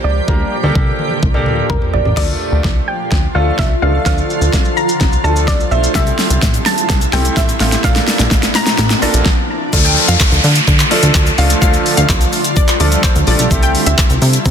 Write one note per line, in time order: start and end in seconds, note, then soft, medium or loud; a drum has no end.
0.00 2.13 A#2 medium
0.00 2.13 F3 medium
0.00 2.13 G4 medium
0.04 0.21 C#2 loud
0.04 1.66 D5 medium
0.28 0.45 D2 loud
0.28 0.55 A#3 medium
0.28 0.55 D4 medium
0.28 0.55 G4 medium
0.28 0.55 A#4 medium
0.28 kick loud
0.28 high tom medium
0.40 high tom soft
0.63 0.72 D2 medium
0.63 1.18 A#3 medium
0.63 1.18 D4 medium
0.63 1.18 G4 medium
0.63 1.18 A4 medium
0.63 high tom medium
0.75 0.92 C2 medium
0.75 kick loud
0.75 mid tom medium
0.99 mid tom medium
1.11 mid tom medium
1.23 1.48 C2 medium
1.23 kick loud
1.34 1.98 A#3 medium
1.34 1.98 D4 medium
1.34 1.98 G4 medium
1.34 1.98 A4 medium
1.34 mid tom medium
1.46 1.63 D2 medium
1.46 mid tom medium
1.70 1.78 C2 medium
1.70 1.92 A#4 medium
1.70 kick loud
1.70 floor tom loud
1.82 floor tom medium
1.93 2.02 A#1 medium
1.93 2.16 D5 medium
1.93 floor tom medium
2.05 2.14 A1 medium
2.05 floor tom medium
2.17 2.34 D2 loud
2.17 5.91 D3 medium
2.17 9.22 F3 medium
2.17 2.89 A3 medium
2.17 2.89 D4 medium
2.17 5.91 F4 medium
2.17 2.90 F4 medium
2.17 2.90 A4 medium
2.17 2.90 D5 medium
2.17 kick loud
2.17 snare medium
2.17 crash medium
2.17 riser medium
2.52 2.61 D2 medium
2.64 2.81 C2 loud
2.64 kick loud
2.64 snare medium
2.88 3.37 G5 loud
3.12 3.28 D2 medium
3.12 kick loud
3.12 snare medium
3.35 3.52 D2 medium
3.35 3.71 A3 medium
3.35 3.71 D4 medium
3.35 3.71 F4 medium
3.35 3.71 A4 medium
3.35 3.59 F5 medium
3.59 3.75 C2 medium
3.59 3.83 E5 medium
3.59 kick loud
3.59 snare medium
3.82 3.99 C#2 loud
3.82 4.00 A3 medium
3.82 4.00 D4 medium
3.82 4.00 F4 medium
3.82 4.01 A4 medium
3.82 4.05 F5 medium
4.06 4.23 D2 loud
4.06 4.78 A3 medium
4.06 4.78 D4 medium
4.06 4.78 F4 medium
4.06 4.79 A4 medium
4.06 4.79 F5 loud
4.06 kick loud
4.06 snare medium
4.06 shaker medium
4.18 shaker soft
4.30 shaker soft
4.41 4.50 D2 medium
4.41 shaker medium
4.53 4.70 C2 loud
4.53 kick loud
4.53 snare medium
4.53 shaker medium
4.65 shaker medium
4.77 5.26 A#5 loud
4.77 shaker medium
4.89 shaker medium
5.01 5.17 C2 medium
5.01 kick loud
5.01 snare medium
5.01 shaker medium
5.13 shaker medium
5.24 5.49 D2 loud
5.24 5.60 A3 medium
5.24 5.60 D4 medium
5.24 5.60 F4 medium
5.24 5.60 A4 medium
5.24 5.48 A5 loud
5.24 shaker medium
5.36 shaker medium
5.48 5.64 C2 medium
5.48 5.70 D5 loud
5.48 kick loud
5.48 snare medium
5.48 shaker medium
5.60 shaker medium
5.71 5.88 B1 medium
5.71 5.89 A3 medium
5.71 5.89 D4 medium
5.71 5.90 F4 medium
5.71 5.90 C5 medium
5.71 5.94 E5 medium
5.71 shaker medium
5.83 shaker medium
5.95 6.12 C2 loud
5.95 7.82 C3 medium
5.95 6.67 C4 medium
5.95 6.67 E4 medium
5.95 7.82 E4 medium
5.95 6.68 G4 medium
5.95 6.68 A4 medium
5.95 6.68 E5 loud
5.95 kick loud
5.95 snare medium
5.95 shaker medium
6.07 closed hi-hat medium
6.07 shaker soft
6.19 snare medium
6.19 open hi-hat medium
6.19 shaker medium
6.19 shaker soft
6.30 6.39 C2 loud
6.30 closed hi-hat medium
6.30 shaker medium
6.42 6.59 A1 medium
6.42 kick loud
6.42 snare loud
6.42 shaker medium
6.54 closed hi-hat medium
6.54 shaker medium
6.54 shaker soft
6.66 7.15 A5 loud
6.66 snare medium
6.66 open hi-hat medium
6.66 shaker medium
6.78 closed hi-hat medium
6.78 shaker medium
6.78 shaker soft
6.90 7.06 C2 loud
6.90 kick loud
6.90 snare medium
6.90 shaker medium
7.01 closed hi-hat medium
7.01 shaker soft
7.01 shaker medium
7.13 7.30 C2 loud
7.13 7.49 C4 medium
7.13 7.49 E4 medium
7.13 7.49 G4 medium
7.13 7.49 A4 medium
7.13 7.37 G5 loud
7.13 snare loud
7.13 open hi-hat medium
7.13 shaker medium
7.25 closed hi-hat medium
7.25 shaker medium
7.37 7.53 A1 loud
7.37 7.61 E5 medium
7.37 kick loud
7.37 snare loud
7.37 shaker medium
7.49 closed hi-hat medium
7.49 shaker medium
7.60 7.77 A1 loud
7.60 7.78 C4 medium
7.60 7.78 E4 medium
7.60 7.79 G4 medium
7.60 7.79 A4 medium
7.60 7.83 F5 medium
7.60 snare loud
7.60 open hi-hat medium
7.60 shaker medium
7.72 snare loud
7.72 closed hi-hat medium
7.72 shaker medium
7.84 8.01 A#1 loud
7.84 9.24 A#2 medium
7.84 8.56 A#3 medium
7.84 9.24 D4 medium
7.84 8.56 D4 medium
7.84 8.56 F4 medium
7.84 8.57 A4 medium
7.84 8.57 F5 loud
7.84 kick loud
7.84 snare loud
7.84 shaker medium
7.96 snare loud
7.96 closed hi-hat soft
7.96 shaker soft
7.96 shaker medium
8.07 snare loud
8.07 open hi-hat medium
8.07 shaker soft
8.07 shaker medium
8.19 8.28 A#1 loud
8.19 snare loud
8.19 closed hi-hat medium
8.19 shaker medium
8.31 8.48 A1 medium
8.31 kick loud
8.31 snare loud
8.31 shaker medium
8.43 snare loud
8.43 closed hi-hat medium
8.43 shaker medium
8.43 shaker soft
8.55 9.04 A#5 loud
8.55 snare loud
8.55 open hi-hat medium
8.55 shaker medium
8.66 snare loud
8.66 closed hi-hat medium
8.66 shaker medium
8.66 shaker soft
8.78 8.95 A1 loud
8.78 snare loud
8.78 shaker medium
8.90 snare loud
8.90 closed hi-hat medium
8.90 shaker medium
9.02 9.07 A#1 soft
9.02 9.26 A#3 medium
9.02 9.26 D4 medium
9.02 9.26 F4 medium
9.02 9.26 A4 medium
9.02 9.24 A5 medium
9.02 open hi-hat medium
9.02 shaker medium
9.14 9.22 A#1 medium
9.14 closed hi-hat medium
9.14 shaker medium
9.26 kick loud
9.26 snare loud
9.73 9.98 D2 loud
9.73 13.47 D3 medium
9.73 10.45 F3 medium
9.73 11.60 A3 medium
9.73 10.45 A3 medium
9.73 10.46 D4 medium
9.73 13.47 F4 medium
9.73 10.46 F4 medium
9.73 10.46 A4 medium
9.73 kick loud
9.73 crash loud
9.73 downlifter medium
9.73 shaker medium
9.85 9.95 G5 medium
9.85 closed hi-hat medium
9.85 shaker medium
9.85 shaker soft
9.97 open hi-hat medium
9.97 shaker soft
10.08 10.17 F2 medium
10.08 10.42 F5 medium
10.08 closed hi-hat medium
10.08 shaker medium
10.20 kick loud
10.20 clap loud
10.20 shaker medium
10.32 10.40 D2 loud
10.32 closed hi-hat medium
10.32 shaker medium
10.32 shaker soft
10.44 10.61 D3 loud
10.44 open hi-hat medium
10.44 shaker medium
10.55 closed hi-hat medium
10.55 shaker medium
10.55 shaker soft
10.68 10.84 D3 loud
10.68 kick loud
10.68 shaker medium
10.79 clap medium
10.79 closed hi-hat medium
10.79 shaker medium
10.91 11.27 F3 loud
10.91 11.27 A3 medium
10.91 11.27 D4 medium
10.91 11.27 F4 medium
10.91 11.27 A4 loud
10.91 open hi-hat medium
10.91 shaker medium
11.03 11.11 D2 loud
11.03 closed hi-hat medium
11.03 shaker medium
11.15 11.31 D2 loud
11.15 kick loud
11.15 clap loud
11.15 shaker medium
11.26 closed hi-hat medium
11.26 shaker medium
11.38 11.55 C#2 loud
11.38 11.56 F3 medium
11.38 11.56 A3 medium
11.38 11.56 D4 medium
11.38 11.57 F4 medium
11.38 11.57 A4 medium
11.38 11.49 F5 medium
11.38 open hi-hat medium
11.38 shaker medium
11.50 closed hi-hat medium
11.50 shaker medium
11.62 11.78 D2 loud
11.62 12.34 F3 medium
11.62 13.49 G3 medium
11.62 12.34 A3 medium
11.62 12.34 D4 medium
11.62 12.34 F4 medium
11.62 12.35 A4 medium
11.62 11.83 F5 loud
11.62 kick loud
11.62 shaker medium
11.73 closed hi-hat medium
11.73 shaker soft
11.73 shaker medium
11.86 open hi-hat medium
11.86 shaker soft
11.97 12.06 D2 loud
11.97 12.31 F5 medium
11.97 closed hi-hat medium
11.97 shaker medium
12.09 12.26 C2 loud
12.09 kick loud
12.09 clap loud
12.09 shaker medium
12.21 closed hi-hat medium
12.21 shaker medium
12.33 open hi-hat medium
12.33 shaker medium
12.44 closed hi-hat medium
12.44 shaker medium
12.44 shaker soft
12.56 12.77 D5 medium
12.56 kick loud
12.56 shaker medium
12.68 clap medium
12.68 closed hi-hat medium
12.68 shaker medium
12.80 12.97 D2 loud
12.80 13.16 F3 medium
12.80 13.16 A3 medium
12.80 13.16 D4 medium
12.80 13.16 F4 medium
12.80 13.16 A4 medium
12.80 12.91 D5 medium
12.80 open hi-hat medium
12.80 shaker medium
12.92 closed hi-hat medium
12.92 shaker medium
13.04 13.14 C5 medium
13.04 kick loud
13.04 clap loud
13.04 shaker medium
13.16 13.24 D2 medium
13.16 closed hi-hat medium
13.16 shaker medium
13.27 13.36 A#1 loud
13.27 13.45 F3 medium
13.27 13.45 A3 medium
13.27 13.45 D4 medium
13.27 13.45 F4 medium
13.27 13.46 A4 medium
13.27 13.38 D5 medium
13.27 open hi-hat medium
13.27 shaker medium
13.39 13.47 B1 medium
13.39 closed hi-hat medium
13.39 shaker medium
13.51 13.76 C2 loud
13.51 14.51 C3 medium
13.51 14.23 A3 medium
13.51 14.51 A3 medium
13.51 14.23 C4 medium
13.51 14.23 E4 medium
13.51 14.51 E4 medium
13.51 14.23 G4 medium
13.51 14.23 A4 medium
13.51 kick loud
13.51 shaker medium
13.63 13.73 G5 medium
13.63 closed hi-hat medium
13.63 shaker medium
13.63 shaker soft
13.75 open hi-hat medium
13.75 shaker soft
13.86 13.95 D2 medium
13.86 14.20 E5 medium
13.86 closed hi-hat medium
13.86 shaker medium
13.98 kick loud
13.98 clap loud
13.98 shaker medium
14.10 14.18 C2 loud
14.10 closed hi-hat medium
14.10 shaker medium
14.22 14.38 C3 loud
14.22 open hi-hat medium
14.22 shaker medium
14.33 closed hi-hat medium
14.33 shaker medium
14.33 shaker soft
14.45 14.51 C3 loud
14.45 kick loud
14.45 shaker medium